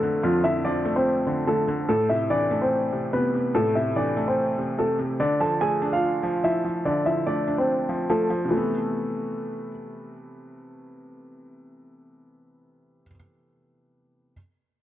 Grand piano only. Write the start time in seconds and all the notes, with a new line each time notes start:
Already playing: A3 A4
0.23 F3 F4
0.44 E4 E5
0.65 D4 D5
0.96 C4 C5
1.47 A3 A4
1.89 A3 A4
2.10 E4 E5
2.30 D4 D5
2.62 C4 C5
3.13 B3 B4
3.54 A3 A4
3.75 E4 E5
3.96 D4 D5
4.28 C4 C5
4.78 A3 A4
5.20 D4 D5
5.41 A4 A5
5.61 G#4 G#5
5.93 F4 F5
6.44 E4 E5
6.85 D4 D5
7.06 E4 E5
7.27 D4 D5
7.58 C4 C5
8.10 A3 A4
8.51 A3